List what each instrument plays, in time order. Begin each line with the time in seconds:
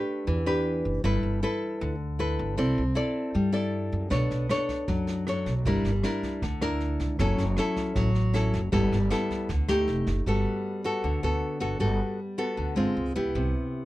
Already playing: nylon-string guitar A3 D4 G4 B4
0.27 upright bass E2, nylon-string guitar E3
0.46 nylon-string guitar D4 G4 B4
0.85 upright bass F#1
1.04 upright bass G1, nylon-string guitar G3 E4 A4 B4
1.23 upright bass G1
1.43 nylon-string guitar E4 A4 B4
1.81 upright bass D2, nylon-string guitar D3
2.19 nylon-string guitar E4 A4 B4
2.39 upright bass G1
2.57 upright bass C2, nylon-string guitar C4 E4 A4 D5
2.78 upright bass C2
2.95 nylon-string guitar E4 A4 D5
3.35 upright bass G2, nylon-string guitar G3
3.53 nylon-string guitar E4 A4 D5
3.92 upright bass F#2
4.10 upright bass B1, nylon-string guitar B3 D4 A4 C#5, kick, cross-stick, snare
4.31 upright bass B1, snare
4.49 nylon-string guitar D4 A4 C#5, cross-stick, snare
4.69 kick, snare
4.88 upright bass F#2, nylon-string guitar F#3, kick, snare
5.07 snare
5.27 nylon-string guitar D4 A4 C#5, cross-stick, snare
5.46 upright bass B1, kick, snare
5.65 upright bass G1, nylon-string guitar G3 D4 E4 A#4, kick, snare
5.85 upright bass G1, snare
6.03 nylon-string guitar D4 E4 A#4, cross-stick, snare
6.23 kick, snare
6.42 upright bass D2, nylon-string guitar D3, kick, snare
6.61 nylon-string guitar D4 E4 A#4, cross-stick, snare
6.80 snare
7.00 upright bass C#2, kick, snare
7.19 upright bass F#1, nylon-string guitar F#3 C#4 E4 A4, kick, cross-stick, snare
7.38 upright bass F#1, snare
7.57 nylon-string guitar C#4 E4 A4, cross-stick, snare
7.76 kick, snare
7.96 upright bass A1, nylon-string guitar F#3, kick, snare
8.15 snare
8.34 nylon-string guitar C#4 E4 A4, cross-stick, snare
8.53 upright bass F#1, kick, snare
8.72 upright bass G1, nylon-string guitar G3 B3 E4 A4, kick, snare
8.92 upright bass G1, snare
9.10 nylon-string guitar B3 E4 A4, cross-stick, snare
9.30 kick, snare
9.49 upright bass D2, nylon-string guitar D3, kick, snare
9.68 nylon-string guitar A3 D#4 G4, cross-stick, snare
9.88 upright bass F1, snare
10.07 upright bass F#1, kick, snare
10.26 upright bass G1, nylon-string guitar G3 B3 F#4 A4
10.84 nylon-string guitar B3 F#4 A4
11.04 upright bass D2, nylon-string guitar D3
11.23 upright bass D2, nylon-string guitar B3 F#4 A4
11.60 upright bass G1, nylon-string guitar B3 F#4 A4
11.80 upright bass G1, nylon-string guitar G3 B3 F#4 A4
12.38 nylon-string guitar B3 F#4 A4
12.57 upright bass D2, nylon-string guitar D3
12.76 upright bass G1, nylon-string guitar G#3 C4 F4
12.97 upright bass C#2
13.16 upright bass C#2, nylon-string guitar B3 E4 G4
13.35 upright bass C2, nylon-string guitar C3